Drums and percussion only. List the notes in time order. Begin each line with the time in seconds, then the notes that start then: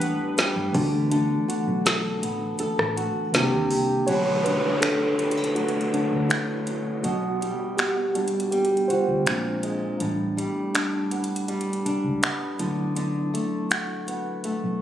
0.01 closed hi-hat
0.38 snare, closed hi-hat
0.74 kick, open hi-hat
1.11 closed hi-hat
1.50 closed hi-hat
1.86 snare, closed hi-hat
2.23 closed hi-hat
2.59 closed hi-hat
2.79 cross-stick
2.97 closed hi-hat
3.34 snare, closed hi-hat
3.71 open hi-hat
4.08 closed hi-hat
4.46 closed hi-hat
4.82 finger snap, closed hi-hat
5.19 closed hi-hat
5.31 closed hi-hat
5.44 closed hi-hat
5.56 closed hi-hat
5.68 closed hi-hat
5.81 closed hi-hat
5.94 closed hi-hat
6.30 finger snap, closed hi-hat
6.67 closed hi-hat
7.04 closed hi-hat
7.42 closed hi-hat
7.78 finger snap, closed hi-hat
8.15 closed hi-hat
8.28 closed hi-hat
8.40 closed hi-hat
8.52 closed hi-hat
8.65 closed hi-hat
8.77 closed hi-hat
8.90 closed hi-hat
9.26 finger snap, closed hi-hat
9.63 closed hi-hat
10.00 closed hi-hat
10.38 closed hi-hat
10.75 finger snap, closed hi-hat
11.11 closed hi-hat
11.24 closed hi-hat
11.36 closed hi-hat
11.48 closed hi-hat
11.61 closed hi-hat
11.73 closed hi-hat
11.86 closed hi-hat
12.23 finger snap, closed hi-hat
12.59 closed hi-hat
12.96 closed hi-hat
13.35 closed hi-hat
13.71 finger snap, closed hi-hat
14.08 closed hi-hat
14.44 closed hi-hat